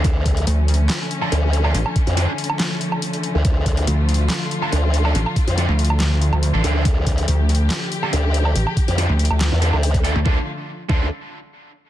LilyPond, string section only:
\new Staff \with { instrumentName = "String section" } { \time 4/4 \key d \minor \tempo 4 = 141 << { cis'1~ | cis'1 | f'1~ | f'1 |
g'1~ | g'1 | <d f a f'>8 r2. r8 | } \\ { <d f a>1~ | <d f a>1~ | <d f a>1~ | <d f a>1~ |
<d f a>1~ | <d f a>1 | r1 | } >> }